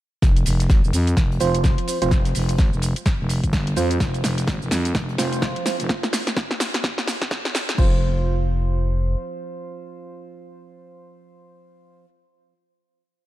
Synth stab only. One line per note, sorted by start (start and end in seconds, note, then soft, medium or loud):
1.40 1.98 F3 medium
1.40 1.98 C4 medium
1.40 1.98 F4 medium
1.40 1.98 C5 loud
2.02 2.10 F3 medium
2.02 2.10 C4 medium
2.02 2.10 F4 medium
2.02 2.10 C5 loud
3.77 3.89 F3 medium
3.77 3.89 C4 medium
3.77 3.89 F4 medium
3.77 3.89 C5 medium
5.18 5.76 F3 medium
5.18 5.76 C4 medium
5.18 5.76 F4 medium
5.18 5.76 C5 loud
7.78 12.06 F3 medium
7.78 12.06 C4 medium
7.78 12.06 F4 medium
7.78 12.06 C5 medium